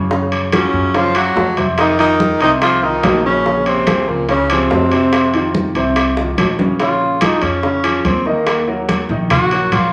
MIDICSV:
0, 0, Header, 1, 6, 480
1, 0, Start_track
1, 0, Key_signature, -5, "minor"
1, 0, Tempo, 417827
1, 132, Time_signature, 4, 2, 24, 8
1, 11406, End_track
2, 0, Start_track
2, 0, Title_t, "Grand piano"
2, 0, Program_c, 0, 0
2, 122, Note_on_c, 0, 49, 76
2, 124, Note_on_c, 0, 61, 83
2, 128, Note_on_c, 0, 73, 80
2, 519, Note_off_c, 0, 49, 0
2, 521, Note_off_c, 0, 61, 0
2, 523, Note_off_c, 0, 73, 0
2, 598, Note_on_c, 0, 54, 71
2, 604, Note_on_c, 0, 65, 72
2, 608, Note_on_c, 0, 66, 76
2, 997, Note_off_c, 0, 54, 0
2, 1001, Note_off_c, 0, 65, 0
2, 1003, Note_off_c, 0, 66, 0
2, 1081, Note_on_c, 0, 49, 79
2, 1086, Note_on_c, 0, 61, 79
2, 1091, Note_on_c, 0, 73, 72
2, 1282, Note_off_c, 0, 49, 0
2, 1285, Note_off_c, 0, 61, 0
2, 1288, Note_off_c, 0, 73, 0
2, 1324, Note_on_c, 0, 54, 71
2, 1329, Note_on_c, 0, 66, 69
2, 1330, Note_on_c, 0, 77, 68
2, 1720, Note_off_c, 0, 54, 0
2, 1724, Note_off_c, 0, 66, 0
2, 1724, Note_off_c, 0, 77, 0
2, 1800, Note_on_c, 0, 48, 85
2, 1804, Note_on_c, 0, 60, 72
2, 1808, Note_on_c, 0, 72, 78
2, 2198, Note_off_c, 0, 48, 0
2, 2201, Note_off_c, 0, 60, 0
2, 2203, Note_off_c, 0, 72, 0
2, 2281, Note_on_c, 0, 51, 75
2, 2287, Note_on_c, 0, 63, 81
2, 2290, Note_on_c, 0, 65, 80
2, 2679, Note_off_c, 0, 51, 0
2, 2682, Note_off_c, 0, 63, 0
2, 2684, Note_off_c, 0, 65, 0
2, 2772, Note_on_c, 0, 48, 85
2, 2777, Note_on_c, 0, 60, 90
2, 2781, Note_on_c, 0, 72, 88
2, 3165, Note_off_c, 0, 48, 0
2, 3168, Note_off_c, 0, 60, 0
2, 3170, Note_off_c, 0, 72, 0
2, 3253, Note_on_c, 0, 51, 65
2, 3257, Note_on_c, 0, 63, 77
2, 3261, Note_on_c, 0, 65, 72
2, 3646, Note_off_c, 0, 51, 0
2, 3648, Note_off_c, 0, 63, 0
2, 3650, Note_off_c, 0, 65, 0
2, 3729, Note_on_c, 0, 49, 81
2, 3735, Note_on_c, 0, 61, 85
2, 3735, Note_on_c, 0, 73, 82
2, 3926, Note_off_c, 0, 49, 0
2, 3930, Note_off_c, 0, 61, 0
2, 3930, Note_off_c, 0, 73, 0
2, 3971, Note_on_c, 0, 49, 73
2, 3975, Note_on_c, 0, 61, 76
2, 3977, Note_on_c, 0, 73, 75
2, 4365, Note_off_c, 0, 49, 0
2, 4367, Note_off_c, 0, 61, 0
2, 4368, Note_off_c, 0, 73, 0
2, 4454, Note_on_c, 0, 53, 77
2, 4457, Note_on_c, 0, 65, 67
2, 4459, Note_on_c, 0, 68, 73
2, 4847, Note_off_c, 0, 53, 0
2, 4848, Note_off_c, 0, 65, 0
2, 4849, Note_off_c, 0, 68, 0
2, 4930, Note_on_c, 0, 49, 82
2, 4933, Note_on_c, 0, 61, 77
2, 4938, Note_on_c, 0, 73, 73
2, 5127, Note_off_c, 0, 49, 0
2, 5129, Note_off_c, 0, 61, 0
2, 5132, Note_off_c, 0, 73, 0
2, 5174, Note_on_c, 0, 53, 76
2, 5180, Note_on_c, 0, 65, 72
2, 5185, Note_on_c, 0, 68, 76
2, 5566, Note_off_c, 0, 53, 0
2, 5570, Note_off_c, 0, 65, 0
2, 5573, Note_off_c, 0, 68, 0
2, 5656, Note_on_c, 0, 48, 76
2, 5664, Note_on_c, 0, 72, 77
2, 5665, Note_on_c, 0, 60, 83
2, 6048, Note_off_c, 0, 48, 0
2, 6052, Note_off_c, 0, 72, 0
2, 6053, Note_off_c, 0, 60, 0
2, 6129, Note_on_c, 0, 51, 83
2, 6136, Note_on_c, 0, 63, 79
2, 6139, Note_on_c, 0, 65, 76
2, 6524, Note_off_c, 0, 51, 0
2, 6528, Note_off_c, 0, 63, 0
2, 6530, Note_off_c, 0, 65, 0
2, 6613, Note_on_c, 0, 48, 82
2, 6615, Note_on_c, 0, 60, 83
2, 6623, Note_on_c, 0, 72, 88
2, 7006, Note_off_c, 0, 48, 0
2, 7008, Note_off_c, 0, 60, 0
2, 7012, Note_off_c, 0, 72, 0
2, 7090, Note_on_c, 0, 51, 69
2, 7097, Note_on_c, 0, 65, 67
2, 7098, Note_on_c, 0, 63, 69
2, 7485, Note_off_c, 0, 51, 0
2, 7489, Note_off_c, 0, 63, 0
2, 7489, Note_off_c, 0, 65, 0
2, 7564, Note_on_c, 0, 49, 77
2, 7570, Note_on_c, 0, 73, 81
2, 7572, Note_on_c, 0, 61, 86
2, 7764, Note_off_c, 0, 49, 0
2, 7768, Note_off_c, 0, 73, 0
2, 7769, Note_off_c, 0, 61, 0
2, 7808, Note_on_c, 0, 49, 77
2, 7810, Note_on_c, 0, 61, 71
2, 7814, Note_on_c, 0, 73, 81
2, 8203, Note_off_c, 0, 49, 0
2, 8205, Note_off_c, 0, 61, 0
2, 8207, Note_off_c, 0, 73, 0
2, 8279, Note_on_c, 0, 53, 67
2, 8284, Note_on_c, 0, 65, 70
2, 8291, Note_on_c, 0, 68, 74
2, 8679, Note_off_c, 0, 53, 0
2, 8681, Note_off_c, 0, 65, 0
2, 8685, Note_off_c, 0, 68, 0
2, 8766, Note_on_c, 0, 49, 74
2, 8768, Note_on_c, 0, 61, 89
2, 8771, Note_on_c, 0, 73, 79
2, 8966, Note_off_c, 0, 49, 0
2, 8967, Note_off_c, 0, 61, 0
2, 8969, Note_off_c, 0, 73, 0
2, 8997, Note_on_c, 0, 53, 69
2, 9003, Note_on_c, 0, 68, 68
2, 9005, Note_on_c, 0, 65, 71
2, 9397, Note_off_c, 0, 53, 0
2, 9401, Note_off_c, 0, 68, 0
2, 9402, Note_off_c, 0, 65, 0
2, 9489, Note_on_c, 0, 51, 83
2, 9494, Note_on_c, 0, 63, 87
2, 9496, Note_on_c, 0, 75, 93
2, 9885, Note_off_c, 0, 51, 0
2, 9887, Note_off_c, 0, 63, 0
2, 9889, Note_off_c, 0, 75, 0
2, 9967, Note_on_c, 0, 54, 84
2, 9969, Note_on_c, 0, 66, 78
2, 9975, Note_on_c, 0, 70, 80
2, 10364, Note_off_c, 0, 54, 0
2, 10365, Note_off_c, 0, 66, 0
2, 10369, Note_off_c, 0, 70, 0
2, 10449, Note_on_c, 0, 51, 96
2, 10457, Note_on_c, 0, 63, 94
2, 10461, Note_on_c, 0, 75, 80
2, 10845, Note_off_c, 0, 51, 0
2, 10850, Note_off_c, 0, 63, 0
2, 10852, Note_off_c, 0, 75, 0
2, 10935, Note_on_c, 0, 54, 68
2, 10937, Note_on_c, 0, 66, 75
2, 10941, Note_on_c, 0, 70, 77
2, 11329, Note_off_c, 0, 54, 0
2, 11330, Note_off_c, 0, 66, 0
2, 11332, Note_off_c, 0, 70, 0
2, 11406, End_track
3, 0, Start_track
3, 0, Title_t, "Tenor saxophone"
3, 0, Program_c, 1, 66
3, 633, Note_on_c, 1, 61, 85
3, 1106, Note_on_c, 1, 65, 97
3, 1123, Note_off_c, 1, 61, 0
3, 1344, Note_on_c, 1, 66, 92
3, 1361, Note_off_c, 1, 65, 0
3, 1817, Note_off_c, 1, 66, 0
3, 2067, Note_on_c, 1, 63, 101
3, 2283, Note_off_c, 1, 63, 0
3, 2297, Note_on_c, 1, 63, 96
3, 2741, Note_off_c, 1, 63, 0
3, 2777, Note_on_c, 1, 63, 94
3, 2883, Note_off_c, 1, 63, 0
3, 3016, Note_on_c, 1, 65, 98
3, 3251, Note_on_c, 1, 63, 87
3, 3269, Note_off_c, 1, 65, 0
3, 3731, Note_off_c, 1, 63, 0
3, 3743, Note_on_c, 1, 61, 105
3, 4216, Note_on_c, 1, 60, 101
3, 4233, Note_off_c, 1, 61, 0
3, 4694, Note_on_c, 1, 58, 82
3, 4711, Note_off_c, 1, 60, 0
3, 4933, Note_off_c, 1, 58, 0
3, 4945, Note_on_c, 1, 61, 80
3, 5180, Note_on_c, 1, 60, 81
3, 5198, Note_off_c, 1, 61, 0
3, 6616, Note_off_c, 1, 60, 0
3, 7825, Note_on_c, 1, 65, 78
3, 8301, Note_on_c, 1, 63, 82
3, 8318, Note_off_c, 1, 65, 0
3, 8529, Note_on_c, 1, 61, 90
3, 8546, Note_off_c, 1, 63, 0
3, 9255, Note_on_c, 1, 60, 75
3, 9273, Note_off_c, 1, 61, 0
3, 9497, Note_on_c, 1, 58, 92
3, 9514, Note_off_c, 1, 60, 0
3, 9975, Note_off_c, 1, 58, 0
3, 10697, Note_on_c, 1, 66, 100
3, 11177, Note_on_c, 1, 65, 84
3, 11194, Note_off_c, 1, 66, 0
3, 11406, Note_off_c, 1, 65, 0
3, 11406, End_track
4, 0, Start_track
4, 0, Title_t, "Baritone saxophone"
4, 0, Program_c, 2, 67
4, 621, Note_on_c, 2, 49, 79
4, 1088, Note_on_c, 2, 53, 93
4, 1106, Note_off_c, 2, 49, 0
4, 1343, Note_on_c, 2, 54, 92
4, 1360, Note_off_c, 2, 53, 0
4, 1817, Note_off_c, 2, 54, 0
4, 2053, Note_on_c, 2, 51, 88
4, 2275, Note_off_c, 2, 51, 0
4, 2297, Note_on_c, 2, 51, 95
4, 2740, Note_off_c, 2, 51, 0
4, 2786, Note_on_c, 2, 51, 88
4, 2890, Note_off_c, 2, 51, 0
4, 3021, Note_on_c, 2, 53, 86
4, 3252, Note_on_c, 2, 51, 93
4, 3269, Note_off_c, 2, 53, 0
4, 3718, Note_off_c, 2, 51, 0
4, 3725, Note_on_c, 2, 49, 90
4, 4211, Note_on_c, 2, 48, 83
4, 4229, Note_off_c, 2, 49, 0
4, 4693, Note_on_c, 2, 46, 71
4, 4711, Note_off_c, 2, 48, 0
4, 4925, Note_off_c, 2, 46, 0
4, 4932, Note_on_c, 2, 49, 85
4, 5164, Note_on_c, 2, 48, 84
4, 5181, Note_off_c, 2, 49, 0
4, 6608, Note_off_c, 2, 48, 0
4, 11406, End_track
5, 0, Start_track
5, 0, Title_t, "Upright bass"
5, 0, Program_c, 3, 32
5, 0, Note_on_c, 3, 42, 97
5, 775, Note_off_c, 3, 42, 0
5, 837, Note_on_c, 3, 42, 92
5, 1518, Note_off_c, 3, 42, 0
5, 1559, Note_on_c, 3, 41, 86
5, 2695, Note_off_c, 3, 41, 0
5, 2765, Note_on_c, 3, 36, 87
5, 3442, Note_off_c, 3, 36, 0
5, 3481, Note_on_c, 3, 34, 91
5, 4616, Note_off_c, 3, 34, 0
5, 4689, Note_on_c, 3, 37, 86
5, 5364, Note_off_c, 3, 37, 0
5, 5409, Note_on_c, 3, 41, 89
5, 6541, Note_off_c, 3, 41, 0
5, 6603, Note_on_c, 3, 36, 89
5, 7281, Note_off_c, 3, 36, 0
5, 7323, Note_on_c, 3, 34, 82
5, 8458, Note_off_c, 3, 34, 0
5, 8524, Note_on_c, 3, 41, 89
5, 9203, Note_off_c, 3, 41, 0
5, 9244, Note_on_c, 3, 39, 91
5, 10379, Note_off_c, 3, 39, 0
5, 10444, Note_on_c, 3, 34, 98
5, 11124, Note_off_c, 3, 34, 0
5, 11160, Note_on_c, 3, 34, 93
5, 11406, Note_off_c, 3, 34, 0
5, 11406, End_track
6, 0, Start_track
6, 0, Title_t, "Drums"
6, 125, Note_on_c, 9, 60, 83
6, 136, Note_on_c, 9, 63, 32
6, 240, Note_off_c, 9, 60, 0
6, 250, Note_off_c, 9, 63, 0
6, 368, Note_on_c, 9, 65, 68
6, 377, Note_on_c, 9, 63, 31
6, 483, Note_off_c, 9, 65, 0
6, 492, Note_off_c, 9, 63, 0
6, 603, Note_on_c, 9, 65, 89
6, 609, Note_on_c, 9, 60, 66
6, 610, Note_on_c, 9, 75, 62
6, 613, Note_on_c, 9, 63, 87
6, 718, Note_off_c, 9, 65, 0
6, 724, Note_off_c, 9, 60, 0
6, 725, Note_off_c, 9, 75, 0
6, 728, Note_off_c, 9, 63, 0
6, 852, Note_on_c, 9, 63, 37
6, 967, Note_off_c, 9, 63, 0
6, 1085, Note_on_c, 9, 65, 73
6, 1088, Note_on_c, 9, 60, 69
6, 1100, Note_on_c, 9, 63, 37
6, 1199, Note_off_c, 9, 65, 0
6, 1203, Note_off_c, 9, 60, 0
6, 1215, Note_off_c, 9, 63, 0
6, 1320, Note_on_c, 9, 65, 88
6, 1327, Note_on_c, 9, 75, 58
6, 1339, Note_on_c, 9, 63, 37
6, 1435, Note_off_c, 9, 65, 0
6, 1442, Note_off_c, 9, 75, 0
6, 1454, Note_off_c, 9, 63, 0
6, 1560, Note_on_c, 9, 66, 70
6, 1572, Note_on_c, 9, 60, 76
6, 1572, Note_on_c, 9, 61, 82
6, 1576, Note_on_c, 9, 63, 30
6, 1675, Note_off_c, 9, 66, 0
6, 1686, Note_off_c, 9, 60, 0
6, 1686, Note_off_c, 9, 61, 0
6, 1691, Note_off_c, 9, 63, 0
6, 1805, Note_on_c, 9, 65, 69
6, 1816, Note_on_c, 9, 63, 73
6, 1920, Note_off_c, 9, 65, 0
6, 1931, Note_off_c, 9, 63, 0
6, 2041, Note_on_c, 9, 65, 76
6, 2041, Note_on_c, 9, 75, 56
6, 2051, Note_on_c, 9, 60, 81
6, 2054, Note_on_c, 9, 63, 32
6, 2156, Note_off_c, 9, 65, 0
6, 2156, Note_off_c, 9, 75, 0
6, 2166, Note_off_c, 9, 60, 0
6, 2169, Note_off_c, 9, 63, 0
6, 2286, Note_on_c, 9, 65, 72
6, 2293, Note_on_c, 9, 63, 32
6, 2294, Note_on_c, 9, 60, 34
6, 2401, Note_off_c, 9, 65, 0
6, 2408, Note_off_c, 9, 63, 0
6, 2409, Note_off_c, 9, 60, 0
6, 2529, Note_on_c, 9, 63, 98
6, 2531, Note_on_c, 9, 60, 61
6, 2643, Note_off_c, 9, 63, 0
6, 2646, Note_off_c, 9, 60, 0
6, 2763, Note_on_c, 9, 65, 68
6, 2769, Note_on_c, 9, 63, 33
6, 2771, Note_on_c, 9, 60, 34
6, 2878, Note_off_c, 9, 65, 0
6, 2884, Note_off_c, 9, 63, 0
6, 2886, Note_off_c, 9, 60, 0
6, 3006, Note_on_c, 9, 65, 99
6, 3006, Note_on_c, 9, 75, 65
6, 3008, Note_on_c, 9, 60, 69
6, 3009, Note_on_c, 9, 63, 34
6, 3121, Note_off_c, 9, 65, 0
6, 3121, Note_off_c, 9, 75, 0
6, 3123, Note_off_c, 9, 60, 0
6, 3124, Note_off_c, 9, 63, 0
6, 3250, Note_on_c, 9, 60, 34
6, 3250, Note_on_c, 9, 63, 37
6, 3364, Note_off_c, 9, 60, 0
6, 3364, Note_off_c, 9, 63, 0
6, 3486, Note_on_c, 9, 65, 82
6, 3486, Note_on_c, 9, 66, 76
6, 3489, Note_on_c, 9, 60, 70
6, 3489, Note_on_c, 9, 61, 84
6, 3489, Note_on_c, 9, 75, 64
6, 3493, Note_on_c, 9, 63, 82
6, 3601, Note_off_c, 9, 65, 0
6, 3601, Note_off_c, 9, 66, 0
6, 3604, Note_off_c, 9, 60, 0
6, 3604, Note_off_c, 9, 61, 0
6, 3604, Note_off_c, 9, 75, 0
6, 3607, Note_off_c, 9, 63, 0
6, 3970, Note_on_c, 9, 63, 33
6, 3974, Note_on_c, 9, 60, 75
6, 4085, Note_off_c, 9, 63, 0
6, 4089, Note_off_c, 9, 60, 0
6, 4206, Note_on_c, 9, 65, 70
6, 4210, Note_on_c, 9, 63, 34
6, 4321, Note_off_c, 9, 65, 0
6, 4325, Note_off_c, 9, 63, 0
6, 4443, Note_on_c, 9, 65, 93
6, 4445, Note_on_c, 9, 75, 68
6, 4448, Note_on_c, 9, 63, 95
6, 4452, Note_on_c, 9, 60, 62
6, 4558, Note_off_c, 9, 65, 0
6, 4560, Note_off_c, 9, 75, 0
6, 4563, Note_off_c, 9, 63, 0
6, 4567, Note_off_c, 9, 60, 0
6, 4696, Note_on_c, 9, 63, 34
6, 4811, Note_off_c, 9, 63, 0
6, 4924, Note_on_c, 9, 65, 63
6, 4928, Note_on_c, 9, 60, 68
6, 4935, Note_on_c, 9, 63, 33
6, 5039, Note_off_c, 9, 65, 0
6, 5043, Note_off_c, 9, 60, 0
6, 5050, Note_off_c, 9, 63, 0
6, 5166, Note_on_c, 9, 65, 103
6, 5166, Note_on_c, 9, 75, 56
6, 5177, Note_on_c, 9, 63, 37
6, 5281, Note_off_c, 9, 65, 0
6, 5281, Note_off_c, 9, 75, 0
6, 5292, Note_off_c, 9, 63, 0
6, 5403, Note_on_c, 9, 66, 70
6, 5409, Note_on_c, 9, 60, 75
6, 5409, Note_on_c, 9, 61, 80
6, 5418, Note_on_c, 9, 63, 30
6, 5518, Note_off_c, 9, 66, 0
6, 5524, Note_off_c, 9, 60, 0
6, 5524, Note_off_c, 9, 61, 0
6, 5533, Note_off_c, 9, 63, 0
6, 5647, Note_on_c, 9, 65, 67
6, 5762, Note_off_c, 9, 65, 0
6, 5887, Note_on_c, 9, 75, 67
6, 5890, Note_on_c, 9, 65, 81
6, 5891, Note_on_c, 9, 60, 78
6, 5898, Note_on_c, 9, 63, 34
6, 6002, Note_off_c, 9, 75, 0
6, 6004, Note_off_c, 9, 65, 0
6, 6005, Note_off_c, 9, 60, 0
6, 6013, Note_off_c, 9, 63, 0
6, 6130, Note_on_c, 9, 65, 68
6, 6133, Note_on_c, 9, 63, 37
6, 6134, Note_on_c, 9, 60, 32
6, 6245, Note_off_c, 9, 65, 0
6, 6248, Note_off_c, 9, 63, 0
6, 6249, Note_off_c, 9, 60, 0
6, 6370, Note_on_c, 9, 60, 63
6, 6371, Note_on_c, 9, 63, 96
6, 6485, Note_off_c, 9, 60, 0
6, 6486, Note_off_c, 9, 63, 0
6, 6608, Note_on_c, 9, 65, 58
6, 6612, Note_on_c, 9, 63, 35
6, 6613, Note_on_c, 9, 60, 31
6, 6723, Note_off_c, 9, 65, 0
6, 6727, Note_off_c, 9, 63, 0
6, 6728, Note_off_c, 9, 60, 0
6, 6847, Note_on_c, 9, 65, 93
6, 6850, Note_on_c, 9, 60, 60
6, 6854, Note_on_c, 9, 75, 71
6, 6855, Note_on_c, 9, 63, 36
6, 6962, Note_off_c, 9, 65, 0
6, 6965, Note_off_c, 9, 60, 0
6, 6969, Note_off_c, 9, 75, 0
6, 6970, Note_off_c, 9, 63, 0
6, 7089, Note_on_c, 9, 60, 80
6, 7095, Note_on_c, 9, 63, 38
6, 7203, Note_off_c, 9, 60, 0
6, 7210, Note_off_c, 9, 63, 0
6, 7328, Note_on_c, 9, 61, 82
6, 7329, Note_on_c, 9, 75, 66
6, 7330, Note_on_c, 9, 65, 88
6, 7330, Note_on_c, 9, 66, 63
6, 7333, Note_on_c, 9, 63, 73
6, 7443, Note_off_c, 9, 61, 0
6, 7444, Note_off_c, 9, 75, 0
6, 7445, Note_off_c, 9, 65, 0
6, 7445, Note_off_c, 9, 66, 0
6, 7448, Note_off_c, 9, 63, 0
6, 7572, Note_on_c, 9, 61, 97
6, 7577, Note_on_c, 9, 63, 75
6, 7687, Note_off_c, 9, 61, 0
6, 7692, Note_off_c, 9, 63, 0
6, 7807, Note_on_c, 9, 65, 58
6, 7812, Note_on_c, 9, 60, 75
6, 7814, Note_on_c, 9, 63, 34
6, 7921, Note_off_c, 9, 65, 0
6, 7927, Note_off_c, 9, 60, 0
6, 7929, Note_off_c, 9, 63, 0
6, 8054, Note_on_c, 9, 63, 31
6, 8055, Note_on_c, 9, 60, 30
6, 8169, Note_off_c, 9, 63, 0
6, 8170, Note_off_c, 9, 60, 0
6, 8283, Note_on_c, 9, 65, 103
6, 8287, Note_on_c, 9, 60, 62
6, 8293, Note_on_c, 9, 63, 94
6, 8293, Note_on_c, 9, 75, 66
6, 8398, Note_off_c, 9, 65, 0
6, 8402, Note_off_c, 9, 60, 0
6, 8407, Note_off_c, 9, 63, 0
6, 8408, Note_off_c, 9, 75, 0
6, 8519, Note_on_c, 9, 65, 69
6, 8529, Note_on_c, 9, 60, 32
6, 8532, Note_on_c, 9, 63, 33
6, 8634, Note_off_c, 9, 65, 0
6, 8644, Note_off_c, 9, 60, 0
6, 8646, Note_off_c, 9, 63, 0
6, 8767, Note_on_c, 9, 63, 33
6, 8769, Note_on_c, 9, 60, 70
6, 8881, Note_off_c, 9, 63, 0
6, 8884, Note_off_c, 9, 60, 0
6, 9005, Note_on_c, 9, 65, 83
6, 9007, Note_on_c, 9, 75, 61
6, 9009, Note_on_c, 9, 63, 41
6, 9120, Note_off_c, 9, 65, 0
6, 9122, Note_off_c, 9, 75, 0
6, 9124, Note_off_c, 9, 63, 0
6, 9245, Note_on_c, 9, 60, 36
6, 9245, Note_on_c, 9, 61, 80
6, 9247, Note_on_c, 9, 65, 58
6, 9248, Note_on_c, 9, 63, 68
6, 9360, Note_off_c, 9, 60, 0
6, 9360, Note_off_c, 9, 61, 0
6, 9362, Note_off_c, 9, 65, 0
6, 9363, Note_off_c, 9, 63, 0
6, 9486, Note_on_c, 9, 60, 34
6, 9489, Note_on_c, 9, 63, 37
6, 9601, Note_off_c, 9, 60, 0
6, 9604, Note_off_c, 9, 63, 0
6, 9726, Note_on_c, 9, 65, 81
6, 9727, Note_on_c, 9, 60, 81
6, 9730, Note_on_c, 9, 75, 62
6, 9736, Note_on_c, 9, 63, 35
6, 9840, Note_off_c, 9, 65, 0
6, 9842, Note_off_c, 9, 60, 0
6, 9845, Note_off_c, 9, 75, 0
6, 9851, Note_off_c, 9, 63, 0
6, 9966, Note_on_c, 9, 60, 30
6, 9976, Note_on_c, 9, 63, 36
6, 10081, Note_off_c, 9, 60, 0
6, 10090, Note_off_c, 9, 63, 0
6, 10209, Note_on_c, 9, 60, 64
6, 10209, Note_on_c, 9, 65, 74
6, 10213, Note_on_c, 9, 63, 91
6, 10324, Note_off_c, 9, 60, 0
6, 10324, Note_off_c, 9, 65, 0
6, 10328, Note_off_c, 9, 63, 0
6, 10452, Note_on_c, 9, 63, 35
6, 10454, Note_on_c, 9, 60, 29
6, 10567, Note_off_c, 9, 63, 0
6, 10569, Note_off_c, 9, 60, 0
6, 10687, Note_on_c, 9, 65, 96
6, 10689, Note_on_c, 9, 75, 64
6, 10693, Note_on_c, 9, 60, 64
6, 10695, Note_on_c, 9, 63, 38
6, 10695, Note_on_c, 9, 64, 83
6, 10802, Note_off_c, 9, 65, 0
6, 10804, Note_off_c, 9, 75, 0
6, 10808, Note_off_c, 9, 60, 0
6, 10810, Note_off_c, 9, 63, 0
6, 10810, Note_off_c, 9, 64, 0
6, 10928, Note_on_c, 9, 65, 71
6, 10930, Note_on_c, 9, 63, 38
6, 11043, Note_off_c, 9, 65, 0
6, 11045, Note_off_c, 9, 63, 0
6, 11167, Note_on_c, 9, 65, 90
6, 11170, Note_on_c, 9, 75, 59
6, 11171, Note_on_c, 9, 60, 36
6, 11171, Note_on_c, 9, 61, 79
6, 11172, Note_on_c, 9, 63, 75
6, 11282, Note_off_c, 9, 65, 0
6, 11285, Note_off_c, 9, 75, 0
6, 11286, Note_off_c, 9, 60, 0
6, 11286, Note_off_c, 9, 61, 0
6, 11287, Note_off_c, 9, 63, 0
6, 11406, End_track
0, 0, End_of_file